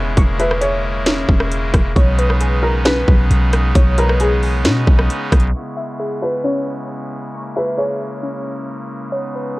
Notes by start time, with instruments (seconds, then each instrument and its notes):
Already playing: 808-style bass E1, pipe organ C#3 G#3 B3 E4, synth pluck C#4 G#4
0.17 808-style bass E1, pipe organ A#3, synth pluck C#6, kick, closed hi-hat
0.39 felt piano B4, synth pluck E5, closed hi-hat
0.51 cross-stick
0.61 synth pluck G#4, felt piano C#5, closed hi-hat
1.06 synth pluck C#4, snare, closed hi-hat
1.29 808-style bass E1, kick
1.40 cross-stick
1.52 closed hi-hat
1.74 808-style bass E1, kick, cross-stick, closed hi-hat
1.96 808-style bass B1, pipe organ C#3 G#3 B3 D#4, synth pluck C#5, kick, closed hi-hat
2.19 synth pluck B4, closed hi-hat
2.30 cross-stick
2.41 synth pluck G#4, closed hi-hat
2.63 felt piano A#4
2.85 synth pluck C#4, felt piano B4, snare, closed hi-hat
3.08 808-style bass B1, kick
3.31 808-style bass B1, closed hi-hat
3.53 cross-stick, closed hi-hat
3.75 808-style bass B1, synth pluck C#5, kick, closed hi-hat
3.98 felt piano A#4, synth pluck B4, closed hi-hat
4.09 cross-stick
4.20 synth pluck G#4, felt piano G#4, closed hi-hat
4.43 open hi-hat
4.65 808-style bass B2, synth pluck C#4, snare, closed hi-hat
4.87 808-style bass B1, kick
4.99 cross-stick
5.10 closed hi-hat
5.32 808-style bass B1, kick, cross-stick, closed hi-hat
5.40 closed hi-hat
5.47 closed hi-hat
5.54 pipe organ C#3 G#3 B3 E4, synth pluck C#6
5.77 synth pluck E5
5.99 synth pluck G#4
6.22 felt piano B4
6.44 synth pluck C#4, felt piano C#5
7.34 pipe organ A#3, synth pluck C#6
7.56 felt piano B4, synth pluck E5
7.78 synth pluck G#4, felt piano C#5
8.23 synth pluck C#4
9.12 pipe organ B3 D#4, synth pluck C#5
9.35 synth pluck B4